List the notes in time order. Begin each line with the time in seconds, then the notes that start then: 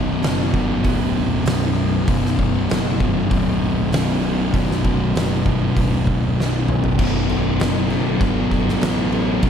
Already playing: B0 B1 F#2 B2
0.23 F#1, snare, open hi-hat
0.54 G1 B1 F#2 B2, kick
0.84 D1, kick, open hi-hat
1.46 B0 B1 F#2, snare, open hi-hat
1.50 B2
2.06 B0 B1 F#2 B2, kick, open hi-hat
2.25 snare
2.39 kick
2.70 F#1, snare, open hi-hat
3.00 G1 B1 F#2 B2, kick
3.31 D1, kick, open hi-hat
3.92 B0 B1 F#2 B2, snare, open hi-hat
4.53 B0 B1 F#2 B2, kick, open hi-hat
4.71 snare
4.85 kick
5.15 F#1, snare, open hi-hat
5.45 G1 F#2 B2, kick
5.49 B1
5.77 D1, kick, open hi-hat
6.07 kick
6.37 B0 B1 F#2 B2, snare
6.68 mid tom
6.84 floor tom
6.98 B0 B1 F#2 B2, kick, crash
7.29 B0, crash
7.60 F#1, snare, crash
7.90 crash
8.20 G1 B1 F#2 B2, kick, crash
8.51 kick, crash
8.69 snare
8.81 A1, snare, crash
9.12 crash
9.42 G1 B1 F#2, kick, crash
9.47 B2